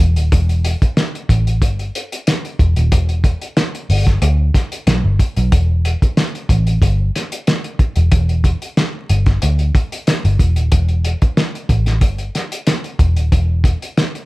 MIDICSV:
0, 0, Header, 1, 4, 480
1, 0, Start_track
1, 0, Key_signature, 1, "minor"
1, 0, Tempo, 650054
1, 237, Time_signature, 4, 2, 24, 8
1, 10525, End_track
2, 0, Start_track
2, 0, Title_t, "Picked electric bass"
2, 0, Program_c, 0, 34
2, 0, Note_on_c, 0, 28, 96
2, 119, Note_off_c, 0, 28, 0
2, 119, Note_on_c, 0, 27, 87
2, 216, Note_off_c, 0, 27, 0
2, 239, Note_on_c, 0, 28, 115
2, 548, Note_off_c, 0, 28, 0
2, 956, Note_on_c, 0, 33, 77
2, 1195, Note_off_c, 0, 33, 0
2, 1195, Note_on_c, 0, 31, 102
2, 1398, Note_off_c, 0, 31, 0
2, 1918, Note_on_c, 0, 28, 89
2, 2025, Note_off_c, 0, 28, 0
2, 2045, Note_on_c, 0, 27, 97
2, 2157, Note_off_c, 0, 27, 0
2, 2157, Note_on_c, 0, 28, 99
2, 2467, Note_off_c, 0, 28, 0
2, 2877, Note_on_c, 0, 31, 87
2, 3079, Note_off_c, 0, 31, 0
2, 3117, Note_on_c, 0, 38, 105
2, 3319, Note_off_c, 0, 38, 0
2, 3598, Note_on_c, 0, 35, 81
2, 3705, Note_off_c, 0, 35, 0
2, 3723, Note_on_c, 0, 31, 84
2, 3819, Note_off_c, 0, 31, 0
2, 3967, Note_on_c, 0, 35, 92
2, 4061, Note_off_c, 0, 35, 0
2, 4079, Note_on_c, 0, 28, 92
2, 4388, Note_off_c, 0, 28, 0
2, 4797, Note_on_c, 0, 33, 90
2, 4999, Note_off_c, 0, 33, 0
2, 5036, Note_on_c, 0, 31, 98
2, 5238, Note_off_c, 0, 31, 0
2, 5884, Note_on_c, 0, 28, 85
2, 5979, Note_off_c, 0, 28, 0
2, 5996, Note_on_c, 0, 28, 118
2, 6305, Note_off_c, 0, 28, 0
2, 6720, Note_on_c, 0, 31, 93
2, 6920, Note_off_c, 0, 31, 0
2, 6964, Note_on_c, 0, 38, 96
2, 7162, Note_off_c, 0, 38, 0
2, 7568, Note_on_c, 0, 31, 77
2, 7660, Note_off_c, 0, 31, 0
2, 7676, Note_on_c, 0, 28, 97
2, 7807, Note_off_c, 0, 28, 0
2, 7807, Note_on_c, 0, 27, 89
2, 7900, Note_off_c, 0, 27, 0
2, 7918, Note_on_c, 0, 28, 101
2, 8225, Note_off_c, 0, 28, 0
2, 8637, Note_on_c, 0, 33, 88
2, 8872, Note_off_c, 0, 33, 0
2, 8872, Note_on_c, 0, 31, 97
2, 9074, Note_off_c, 0, 31, 0
2, 9596, Note_on_c, 0, 28, 86
2, 9724, Note_off_c, 0, 28, 0
2, 9724, Note_on_c, 0, 27, 85
2, 9817, Note_off_c, 0, 27, 0
2, 9837, Note_on_c, 0, 28, 102
2, 10144, Note_off_c, 0, 28, 0
2, 10525, End_track
3, 0, Start_track
3, 0, Title_t, "Muted picked electric bass strokes"
3, 5755, Note_on_c, 9, 29, 49
3, 5829, Note_off_c, 9, 29, 0
3, 10525, End_track
4, 0, Start_track
4, 0, Title_t, "Drums"
4, 0, Note_on_c, 9, 42, 62
4, 71, Note_off_c, 9, 42, 0
4, 121, Note_on_c, 9, 42, 47
4, 194, Note_off_c, 9, 42, 0
4, 237, Note_on_c, 9, 36, 124
4, 238, Note_on_c, 9, 42, 94
4, 311, Note_off_c, 9, 36, 0
4, 311, Note_off_c, 9, 42, 0
4, 364, Note_on_c, 9, 42, 36
4, 438, Note_off_c, 9, 42, 0
4, 477, Note_on_c, 9, 42, 79
4, 550, Note_off_c, 9, 42, 0
4, 605, Note_on_c, 9, 36, 88
4, 605, Note_on_c, 9, 42, 50
4, 679, Note_off_c, 9, 36, 0
4, 679, Note_off_c, 9, 42, 0
4, 715, Note_on_c, 9, 42, 71
4, 716, Note_on_c, 9, 38, 127
4, 789, Note_off_c, 9, 42, 0
4, 790, Note_off_c, 9, 38, 0
4, 850, Note_on_c, 9, 42, 40
4, 924, Note_off_c, 9, 42, 0
4, 955, Note_on_c, 9, 36, 100
4, 960, Note_on_c, 9, 42, 89
4, 1028, Note_off_c, 9, 36, 0
4, 1033, Note_off_c, 9, 42, 0
4, 1086, Note_on_c, 9, 42, 42
4, 1160, Note_off_c, 9, 42, 0
4, 1194, Note_on_c, 9, 36, 87
4, 1196, Note_on_c, 9, 42, 80
4, 1268, Note_off_c, 9, 36, 0
4, 1270, Note_off_c, 9, 42, 0
4, 1324, Note_on_c, 9, 42, 34
4, 1398, Note_off_c, 9, 42, 0
4, 1442, Note_on_c, 9, 42, 78
4, 1516, Note_off_c, 9, 42, 0
4, 1568, Note_on_c, 9, 42, 58
4, 1642, Note_off_c, 9, 42, 0
4, 1677, Note_on_c, 9, 42, 93
4, 1681, Note_on_c, 9, 38, 89
4, 1751, Note_off_c, 9, 42, 0
4, 1755, Note_off_c, 9, 38, 0
4, 1808, Note_on_c, 9, 42, 35
4, 1881, Note_off_c, 9, 42, 0
4, 1916, Note_on_c, 9, 36, 91
4, 1918, Note_on_c, 9, 42, 55
4, 1989, Note_off_c, 9, 36, 0
4, 1992, Note_off_c, 9, 42, 0
4, 2041, Note_on_c, 9, 42, 43
4, 2115, Note_off_c, 9, 42, 0
4, 2155, Note_on_c, 9, 42, 96
4, 2157, Note_on_c, 9, 36, 104
4, 2229, Note_off_c, 9, 42, 0
4, 2230, Note_off_c, 9, 36, 0
4, 2281, Note_on_c, 9, 42, 36
4, 2355, Note_off_c, 9, 42, 0
4, 2391, Note_on_c, 9, 36, 95
4, 2394, Note_on_c, 9, 42, 70
4, 2465, Note_off_c, 9, 36, 0
4, 2468, Note_off_c, 9, 42, 0
4, 2522, Note_on_c, 9, 42, 46
4, 2596, Note_off_c, 9, 42, 0
4, 2634, Note_on_c, 9, 42, 74
4, 2635, Note_on_c, 9, 38, 114
4, 2708, Note_off_c, 9, 42, 0
4, 2709, Note_off_c, 9, 38, 0
4, 2767, Note_on_c, 9, 42, 41
4, 2841, Note_off_c, 9, 42, 0
4, 2878, Note_on_c, 9, 46, 82
4, 2951, Note_off_c, 9, 46, 0
4, 3003, Note_on_c, 9, 36, 77
4, 3003, Note_on_c, 9, 42, 41
4, 3007, Note_on_c, 9, 38, 29
4, 3077, Note_off_c, 9, 36, 0
4, 3077, Note_off_c, 9, 42, 0
4, 3081, Note_off_c, 9, 38, 0
4, 3115, Note_on_c, 9, 42, 86
4, 3189, Note_off_c, 9, 42, 0
4, 3356, Note_on_c, 9, 36, 100
4, 3359, Note_on_c, 9, 42, 83
4, 3362, Note_on_c, 9, 38, 40
4, 3430, Note_off_c, 9, 36, 0
4, 3432, Note_off_c, 9, 42, 0
4, 3436, Note_off_c, 9, 38, 0
4, 3484, Note_on_c, 9, 42, 55
4, 3558, Note_off_c, 9, 42, 0
4, 3596, Note_on_c, 9, 42, 97
4, 3600, Note_on_c, 9, 38, 89
4, 3670, Note_off_c, 9, 42, 0
4, 3674, Note_off_c, 9, 38, 0
4, 3836, Note_on_c, 9, 36, 78
4, 3837, Note_on_c, 9, 42, 65
4, 3910, Note_off_c, 9, 36, 0
4, 3911, Note_off_c, 9, 42, 0
4, 3962, Note_on_c, 9, 42, 47
4, 4035, Note_off_c, 9, 42, 0
4, 4077, Note_on_c, 9, 42, 103
4, 4078, Note_on_c, 9, 36, 116
4, 4151, Note_off_c, 9, 42, 0
4, 4152, Note_off_c, 9, 36, 0
4, 4319, Note_on_c, 9, 42, 73
4, 4393, Note_off_c, 9, 42, 0
4, 4446, Note_on_c, 9, 36, 81
4, 4449, Note_on_c, 9, 42, 51
4, 4520, Note_off_c, 9, 36, 0
4, 4523, Note_off_c, 9, 42, 0
4, 4557, Note_on_c, 9, 42, 78
4, 4558, Note_on_c, 9, 38, 115
4, 4631, Note_off_c, 9, 42, 0
4, 4632, Note_off_c, 9, 38, 0
4, 4689, Note_on_c, 9, 42, 37
4, 4763, Note_off_c, 9, 42, 0
4, 4794, Note_on_c, 9, 36, 96
4, 4797, Note_on_c, 9, 42, 80
4, 4868, Note_off_c, 9, 36, 0
4, 4871, Note_off_c, 9, 42, 0
4, 4923, Note_on_c, 9, 42, 42
4, 4997, Note_off_c, 9, 42, 0
4, 5034, Note_on_c, 9, 36, 88
4, 5037, Note_on_c, 9, 42, 81
4, 5107, Note_off_c, 9, 36, 0
4, 5110, Note_off_c, 9, 42, 0
4, 5283, Note_on_c, 9, 42, 79
4, 5287, Note_on_c, 9, 38, 39
4, 5357, Note_off_c, 9, 42, 0
4, 5360, Note_off_c, 9, 38, 0
4, 5405, Note_on_c, 9, 42, 65
4, 5479, Note_off_c, 9, 42, 0
4, 5518, Note_on_c, 9, 42, 91
4, 5522, Note_on_c, 9, 38, 99
4, 5591, Note_off_c, 9, 42, 0
4, 5596, Note_off_c, 9, 38, 0
4, 5644, Note_on_c, 9, 42, 39
4, 5717, Note_off_c, 9, 42, 0
4, 5754, Note_on_c, 9, 36, 95
4, 5755, Note_on_c, 9, 42, 57
4, 5828, Note_off_c, 9, 36, 0
4, 5829, Note_off_c, 9, 42, 0
4, 5875, Note_on_c, 9, 42, 46
4, 5948, Note_off_c, 9, 42, 0
4, 5993, Note_on_c, 9, 42, 100
4, 5996, Note_on_c, 9, 36, 112
4, 6067, Note_off_c, 9, 42, 0
4, 6070, Note_off_c, 9, 36, 0
4, 6122, Note_on_c, 9, 42, 36
4, 6196, Note_off_c, 9, 42, 0
4, 6232, Note_on_c, 9, 36, 92
4, 6235, Note_on_c, 9, 42, 78
4, 6306, Note_off_c, 9, 36, 0
4, 6309, Note_off_c, 9, 42, 0
4, 6364, Note_on_c, 9, 42, 46
4, 6438, Note_off_c, 9, 42, 0
4, 6477, Note_on_c, 9, 42, 75
4, 6478, Note_on_c, 9, 38, 127
4, 6551, Note_off_c, 9, 42, 0
4, 6552, Note_off_c, 9, 38, 0
4, 6716, Note_on_c, 9, 42, 73
4, 6789, Note_off_c, 9, 42, 0
4, 6838, Note_on_c, 9, 42, 42
4, 6842, Note_on_c, 9, 36, 94
4, 6843, Note_on_c, 9, 38, 29
4, 6912, Note_off_c, 9, 42, 0
4, 6916, Note_off_c, 9, 36, 0
4, 6916, Note_off_c, 9, 38, 0
4, 6955, Note_on_c, 9, 42, 79
4, 7029, Note_off_c, 9, 42, 0
4, 7080, Note_on_c, 9, 42, 38
4, 7154, Note_off_c, 9, 42, 0
4, 7197, Note_on_c, 9, 36, 107
4, 7200, Note_on_c, 9, 42, 78
4, 7271, Note_off_c, 9, 36, 0
4, 7274, Note_off_c, 9, 42, 0
4, 7327, Note_on_c, 9, 42, 61
4, 7401, Note_off_c, 9, 42, 0
4, 7437, Note_on_c, 9, 42, 82
4, 7441, Note_on_c, 9, 38, 93
4, 7510, Note_off_c, 9, 42, 0
4, 7515, Note_off_c, 9, 38, 0
4, 7567, Note_on_c, 9, 42, 40
4, 7641, Note_off_c, 9, 42, 0
4, 7676, Note_on_c, 9, 36, 85
4, 7678, Note_on_c, 9, 42, 69
4, 7749, Note_off_c, 9, 36, 0
4, 7751, Note_off_c, 9, 42, 0
4, 7799, Note_on_c, 9, 42, 41
4, 7873, Note_off_c, 9, 42, 0
4, 7914, Note_on_c, 9, 42, 100
4, 7916, Note_on_c, 9, 36, 125
4, 7987, Note_off_c, 9, 42, 0
4, 7990, Note_off_c, 9, 36, 0
4, 8038, Note_on_c, 9, 42, 35
4, 8112, Note_off_c, 9, 42, 0
4, 8156, Note_on_c, 9, 42, 75
4, 8230, Note_off_c, 9, 42, 0
4, 8283, Note_on_c, 9, 42, 47
4, 8286, Note_on_c, 9, 36, 91
4, 8357, Note_off_c, 9, 42, 0
4, 8359, Note_off_c, 9, 36, 0
4, 8397, Note_on_c, 9, 38, 121
4, 8397, Note_on_c, 9, 42, 76
4, 8471, Note_off_c, 9, 38, 0
4, 8471, Note_off_c, 9, 42, 0
4, 8530, Note_on_c, 9, 42, 40
4, 8604, Note_off_c, 9, 42, 0
4, 8634, Note_on_c, 9, 36, 100
4, 8636, Note_on_c, 9, 42, 80
4, 8707, Note_off_c, 9, 36, 0
4, 8709, Note_off_c, 9, 42, 0
4, 8759, Note_on_c, 9, 42, 44
4, 8763, Note_on_c, 9, 38, 28
4, 8833, Note_off_c, 9, 42, 0
4, 8837, Note_off_c, 9, 38, 0
4, 8870, Note_on_c, 9, 42, 82
4, 8871, Note_on_c, 9, 36, 93
4, 8944, Note_off_c, 9, 42, 0
4, 8945, Note_off_c, 9, 36, 0
4, 8997, Note_on_c, 9, 42, 38
4, 9071, Note_off_c, 9, 42, 0
4, 9119, Note_on_c, 9, 42, 72
4, 9122, Note_on_c, 9, 38, 43
4, 9193, Note_off_c, 9, 42, 0
4, 9196, Note_off_c, 9, 38, 0
4, 9244, Note_on_c, 9, 42, 64
4, 9318, Note_off_c, 9, 42, 0
4, 9353, Note_on_c, 9, 42, 94
4, 9358, Note_on_c, 9, 38, 90
4, 9427, Note_off_c, 9, 42, 0
4, 9432, Note_off_c, 9, 38, 0
4, 9483, Note_on_c, 9, 42, 38
4, 9556, Note_off_c, 9, 42, 0
4, 9594, Note_on_c, 9, 36, 90
4, 9596, Note_on_c, 9, 42, 64
4, 9668, Note_off_c, 9, 36, 0
4, 9670, Note_off_c, 9, 42, 0
4, 9721, Note_on_c, 9, 42, 46
4, 9795, Note_off_c, 9, 42, 0
4, 9836, Note_on_c, 9, 36, 116
4, 9837, Note_on_c, 9, 42, 108
4, 9910, Note_off_c, 9, 36, 0
4, 9911, Note_off_c, 9, 42, 0
4, 10071, Note_on_c, 9, 36, 99
4, 10078, Note_on_c, 9, 42, 80
4, 10145, Note_off_c, 9, 36, 0
4, 10152, Note_off_c, 9, 42, 0
4, 10207, Note_on_c, 9, 42, 50
4, 10281, Note_off_c, 9, 42, 0
4, 10319, Note_on_c, 9, 42, 71
4, 10320, Note_on_c, 9, 38, 118
4, 10393, Note_off_c, 9, 38, 0
4, 10393, Note_off_c, 9, 42, 0
4, 10449, Note_on_c, 9, 42, 38
4, 10523, Note_off_c, 9, 42, 0
4, 10525, End_track
0, 0, End_of_file